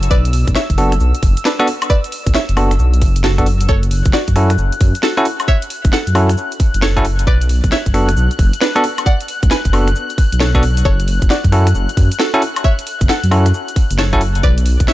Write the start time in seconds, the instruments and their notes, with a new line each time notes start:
Already playing: analog synth pad E6
0.03 closed hi-hat, shaker
0.11 detuned saw bass B1, synth pluck B4 D5, kick, shaker
0.25 closed hi-hat, shaker
0.33 open hi-hat
0.48 detuned saw bass B1, kick, closed hi-hat, shaker
0.55 synth pluck C#5 E5, snare, shaker
0.70 detuned saw bass F#1, kick, closed hi-hat, shaker
0.78 tine electric piano B3 D4 F#4 A4, open hi-hat
0.92 finger snap, closed hi-hat, shaker
1.00 detuned saw bass B1, shaker
1.15 closed hi-hat, shaker
1.23 detuned saw bass F#1, kick, open hi-hat
1.37 closed hi-hat, shaker
1.45 synth pluck D4 B4, snare, shaker
1.59 tine electric piano B3 D4 F#4 A4, finger snap, closed hi-hat, shaker
1.67 open hi-hat
1.82 closed hi-hat, high woodblock, shaker
1.90 synth pluck B4 D5, kick, shaker
2.04 closed hi-hat, shaker
2.12 open hi-hat
2.27 detuned saw bass B1, kick, closed hi-hat, shaker
2.34 synth pluck C#5 E5, snare, shaker
2.49 detuned saw bass F#1, closed hi-hat, shaker
2.57 tine electric piano B3 D4 F#4 A4, finger snap, open hi-hat, high woodblock
2.71 finger snap, closed hi-hat, shaker
2.79 detuned saw bass B1, shaker
2.94 closed hi-hat, shaker
3.02 detuned saw bass F#1, kick, open hi-hat
3.16 closed hi-hat, shaker
3.24 synth pluck F#4 A4, snare, shaker
3.38 tine electric piano B3 D4 F#4 A4, finger snap, kick, closed hi-hat, shaker
3.46 open hi-hat
3.61 closed hi-hat, shaker
3.69 detuned saw bass F#1, synth pluck A4 C#5, analog synth pad F#6, kick, shaker
3.83 closed hi-hat, shaker
3.91 open hi-hat
4.05 detuned saw bass F#1, kick, closed hi-hat, shaker
4.13 synth pluck F#4 D5, snare, shaker
4.28 detuned saw bass F#2, kick, closed hi-hat, shaker
4.36 tine electric piano C#4 E4 F#4 A4, finger snap, open hi-hat
4.50 finger snap, closed hi-hat, shaker
4.58 detuned saw bass F#1, shaker
4.72 closed hi-hat, shaker
4.81 detuned saw bass F#2, kick, open hi-hat
4.95 closed hi-hat, shaker
5.03 synth pluck F#4 A4, snare, shaker
5.17 tine electric piano C#4 E4 F#4 A4, finger snap, closed hi-hat, shaker
5.25 open hi-hat
5.40 closed hi-hat, high woodblock, shaker
5.48 synth pluck C#5 E5, kick, shaker
5.62 closed hi-hat, shaker
5.70 open hi-hat
5.85 detuned saw bass F#1, kick, closed hi-hat, shaker
5.93 synth pluck A4 F#5, snare, shaker
6.07 detuned saw bass F#2, closed hi-hat, shaker
6.15 tine electric piano C#4 E4 F#4 A4, open hi-hat, high woodblock
6.29 finger snap, closed hi-hat, shaker
6.38 shaker
6.52 closed hi-hat, shaker
6.60 kick, open hi-hat
6.74 detuned saw bass F#1, closed hi-hat, shaker
6.82 synth pluck A4 C#5, snare, shaker
6.97 tine electric piano C#4 E4 F#4 A4, finger snap, kick, closed hi-hat, shaker
7.05 open hi-hat
7.19 closed hi-hat, shaker
7.27 detuned saw bass B1, synth pluck B4 D5, kick, shaker
7.41 closed hi-hat, shaker
7.49 open hi-hat
7.64 detuned saw bass B1, kick, closed hi-hat, shaker
7.72 synth pluck C#5 E5, snare, shaker
7.86 detuned saw bass F#1, kick, closed hi-hat, shaker
7.94 tine electric piano B3 D4 F#4 A4, finger snap, open hi-hat
8.09 finger snap, closed hi-hat, shaker
8.17 detuned saw bass B1, shaker
8.31 closed hi-hat, shaker
8.39 detuned saw bass F#1, kick, open hi-hat
8.53 closed hi-hat, shaker
8.61 synth pluck D4 B4, snare, shaker
8.76 tine electric piano B3 D4 F#4 A4, finger snap, closed hi-hat, shaker
8.84 open hi-hat
8.98 closed hi-hat, high woodblock, shaker
9.06 synth pluck D5 F#5, kick, shaker
9.21 closed hi-hat, shaker
9.28 open hi-hat
9.43 detuned saw bass B1, kick, closed hi-hat, shaker
9.51 synth pluck B4 G#5, snare, shaker
9.65 detuned saw bass F#1, kick, closed hi-hat, shaker
9.73 tine electric piano B3 D4 F#4 A4, open hi-hat, high woodblock
9.88 finger snap, closed hi-hat, shaker
9.96 shaker
10.10 closed hi-hat, shaker
10.18 kick, open hi-hat
10.32 detuned saw bass B1, closed hi-hat, shaker
10.40 synth pluck A4 C#5, snare, shaker
10.55 tine electric piano B3 D4 F#4 A4, finger snap, kick, closed hi-hat, shaker
10.63 open hi-hat
10.77 closed hi-hat, shaker
10.85 detuned saw bass F#1, synth pluck A4 C#5, kick, shaker
11.00 closed hi-hat, shaker
11.08 open hi-hat
11.22 detuned saw bass F#1, kick, closed hi-hat, shaker
11.30 synth pluck F#4 D5, snare, shaker
11.44 detuned saw bass F#2, kick, closed hi-hat, shaker
11.52 tine electric piano C#4 E4 F#4 A4, finger snap, open hi-hat
11.67 finger snap, closed hi-hat, shaker
11.75 detuned saw bass F#1, shaker
11.89 closed hi-hat, shaker
11.97 detuned saw bass F#2, kick, open hi-hat
12.12 closed hi-hat, shaker
12.20 synth pluck F#4 A4, snare, shaker
12.34 tine electric piano C#4 E4 F#4 A4, finger snap, closed hi-hat, shaker
12.42 open hi-hat
12.56 closed hi-hat, high woodblock, shaker
12.64 synth pluck C#5 E5, kick, shaker
12.79 closed hi-hat, shaker
12.87 open hi-hat
13.01 detuned saw bass F#1, kick, closed hi-hat, shaker
13.09 synth pluck A4 F#5, snare, shaker
13.23 detuned saw bass F#2, closed hi-hat, shaker
13.31 tine electric piano C#4 E4 F#4 A4, open hi-hat, high woodblock
13.46 finger snap, closed hi-hat, shaker
13.54 shaker
13.68 closed hi-hat, shaker
13.76 kick, open hi-hat
13.91 detuned saw bass F#1, closed hi-hat, shaker
13.99 synth pluck A4 C#5, snare, shaker
14.13 tine electric piano C#4 E4 F#4 A4, finger snap, kick, closed hi-hat, shaker
14.21 open hi-hat
14.35 closed hi-hat, shaker
14.43 detuned saw bass B1, synth pluck B4 D5, kick, shaker
14.58 closed hi-hat, shaker
14.66 open hi-hat
14.80 detuned saw bass B1, kick, closed hi-hat, shaker
14.88 synth pluck C#5 E5, snare, shaker